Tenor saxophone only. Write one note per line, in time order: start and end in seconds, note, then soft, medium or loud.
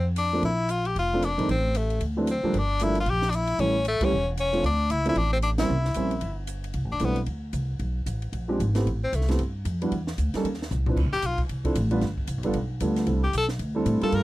0.18 0.42 D4 medium
0.45 0.72 E4 medium
0.71 0.88 F4 loud
0.86 0.97 G4 medium
0.99 1.27 F4 medium
1.25 1.50 D4 medium
1.50 1.79 C4 medium
1.77 2.03 A3 medium
2.31 2.60 C4 medium
2.58 2.85 D4 medium
2.84 2.98 E4 loud
3.00 3.12 F4 medium
3.10 3.32 G4 loud
3.30 3.37 D4 medium
3.36 3.62 E4 medium
3.60 3.86 C#4 medium
3.88 4.06 A3 medium
4.05 4.29 C#4 medium
4.40 4.64 C#4 medium
4.66 4.93 D4 medium
4.91 5.07 E4 loud
5.09 5.20 E4 medium
5.18 5.32 D4 medium
5.33 5.38 C4 medium
5.43 5.50 D4 medium
5.60 6.45 E4 medium
6.92 7.06 D4 medium
7.05 7.19 B3 medium
9.04 9.17 C4 medium
9.16 9.30 A3 medium
11.13 11.27 G4 medium
11.26 11.40 F4 medium
13.24 13.33 G4 medium
13.37 13.46 A4 medium
14.03 14.17 A4 medium
14.15 14.23 A#4 medium